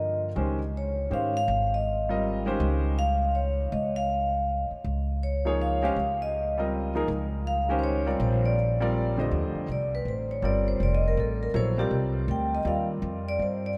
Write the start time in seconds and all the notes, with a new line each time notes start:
Already playing: G2 D3 F3 A#3 F4 A#4 D#5
0.36 C#2 D#3 G#3 C#4 G4 C5
0.77 C#5
1.10 G#2 D#3 G#3 C#4 G4 C5 F5
1.37 F5
1.48 G#1
1.74 D#5
2.09 G3 C4 F4 A#4 D#5
2.46 D#3 G#3 C#4 G4 C5
2.60 C#2
2.99 F5
3.35 C#5
3.72 C#2 D#5
3.96 F5
4.71 muted upright bass stroke
4.84 C#2
5.23 C#5
5.45 F3 A#3 D#4 G#4 C#5
5.62 F5
5.82 G#3 C#4 G4 C5 F5
5.96 C#2
6.22 D#5
6.58 G3 C4 F4 A#4 D#5
6.95 F3 A#3 D#4 G#4 A#4
7.08 C#2
7.47 F5
7.69 D#3 G#3 C#4 G4 C5
7.79 C5
7.84 C#5
8.06 G3 C4 F4 A#4 D5
8.20 A#1 C5
8.46 D5
8.80 G3 C4 F4 A#4 D5
9.17 F2 D3 A3 G4 C5 D#5
9.31 D#2
9.55 muted upright bass stroke
9.68 C2 D5
9.95 B4
10.05 A1 C5
10.31 C#5
10.42 G1 G3 C4 F4 A#4 D5
10.68 C5
10.80 F1 D5
10.95 D#5
11.08 A#4
11.17 A1 A4
11.43 A#4
11.54 A#1 F#3 B3 E4 A4 C5 C#5
11.78 G3 C4 F4 G4 A#4 D5
11.91 C2
12.28 D2 G5
12.55 D#5
12.65 D#2 G3 C4 F4 A#4 D5 F5
13.02 F2
13.29 D5
13.39 G2 C5
13.66 D5